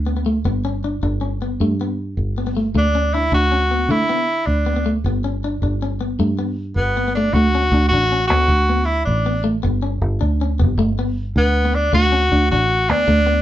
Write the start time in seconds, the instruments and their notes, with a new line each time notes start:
Already playing: fingered electric bass D2
0.07 clean electric guitar B3
0.17 clean electric guitar B3
0.26 clean electric guitar A3
0.45 fingered electric bass G1, clean electric guitar B3
0.65 clean electric guitar C#4
0.84 clean electric guitar D4
1.03 fingered electric bass G1, clean electric guitar D4
1.21 clean electric guitar C#4
1.42 clean electric guitar B3
1.60 fingered electric bass G2, clean electric guitar A3
1.81 clean electric guitar B3
2.17 fingered electric bass G1
2.38 clean electric guitar B3
2.47 clean electric guitar B3
2.57 clean electric guitar A3
2.74 fingered electric bass D2, clean electric guitar A3, tenor saxophone D4
2.95 clean electric guitar C#4
3.14 clean electric guitar D4, tenor saxophone E4
3.32 fingered electric bass D2, clean electric guitar D4, tenor saxophone F#4
3.52 clean electric guitar C#4
3.71 clean electric guitar B3
3.89 fingered electric bass D3, clean electric guitar A3, tenor saxophone E4
4.09 clean electric guitar B3
4.46 fingered electric bass D2, tenor saxophone D4
4.66 clean electric guitar B3
4.76 clean electric guitar B3
4.86 clean electric guitar A3
5.04 fingered electric bass G1, clean electric guitar B3
5.24 clean electric guitar C#4
5.44 clean electric guitar D4
5.62 fingered electric bass G1, clean electric guitar D4
5.82 clean electric guitar C#4
6.01 clean electric guitar B3
6.19 fingered electric bass G2, clean electric guitar A3
6.39 clean electric guitar B3
6.76 fingered electric bass G1, tenor saxophone B3
6.97 clean electric guitar B3
7.08 clean electric guitar B3
7.15 clean electric guitar A3, tenor saxophone D4
7.33 fingered electric bass D2, clean electric guitar A3, tenor saxophone F#4
7.55 clean electric guitar C#4
7.72 fingered electric bass D2, clean electric guitar D4
7.89 fingered electric bass A1, tenor saxophone F#4
7.94 clean electric guitar D4
8.12 clean electric guitar C#4
8.27 fingered electric bass D2, clean electric guitar B3, tenor saxophone F#4
8.48 fingered electric bass D2, muted clean electric guitar stroke
8.70 clean electric guitar B3
8.85 tenor saxophone E4
9.05 fingered electric bass A1, tenor saxophone D4
9.26 clean electric guitar B3
9.44 clean electric guitar A3
9.63 fingered electric bass G1, clean electric guitar B3
9.83 clean electric guitar C#4
10.02 fingered electric bass G1
10.21 fingered electric bass D2, clean electric guitar D4
10.41 clean electric guitar C#4
10.59 fingered electric bass G1, clean electric guitar B3
10.78 fingered electric bass G1, clean electric guitar A3
10.99 clean electric guitar B3
11.36 fingered electric bass D2, tenor saxophone B3
11.65 clean electric guitar B3
11.75 tenor saxophone D4
11.93 fingered electric bass D2, clean electric guitar A3, tenor saxophone F#4
12.12 clean electric guitar C#4
12.32 fingered electric bass D2, clean electric guitar D4
12.51 fingered electric bass A1, clean electric guitar D4, tenor saxophone F#4
12.89 fingered electric bass D2, clean electric guitar B3, tenor saxophone D4
13.08 fingered electric bass D2, clean electric guitar A3
13.27 clean electric guitar B3